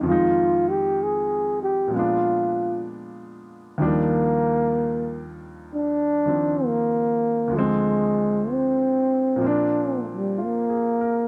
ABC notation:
X:1
M:4/4
L:1/8
Q:"Swing" 1/4=64
K:Eb
V:1 name="Trombone"
F G A G F2 z2 | B,3 z D2 B,2 | A,2 C2 D G, B,2 |]
V:2 name="Grand piano"
z8 | z8 | z6 (3F A B |]
V:3 name="Grand piano" clef=bass
[F,,E,F,A,E]4 [B,,F,A,_CD]4 | [E,,E,F,G,D]4- [E,,E,F,G,D] [E,F,C]3 | [D,,D,F,A,C]4 [B,,F,B,CD]4 |]